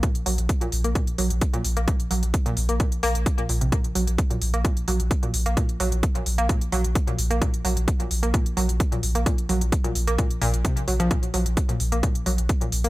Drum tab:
HH |xxoxxxoxxxoxxxox|xxoxxxoxxxoxxxox|xxoxxxoxxxoxxxox|xxoxxxoxxxoxxxox|
BD |o---o---o---o---|o---o---o---o---|o---o---o---o---|o---o---o---o---|

HH |xxoxxxoxxxoxxxox|xxoxxxoxxxoxxxox|xxoxxxoxxxoxxxox|
BD |o---o---o---o---|o---o---o---o---|o---o---o---o---|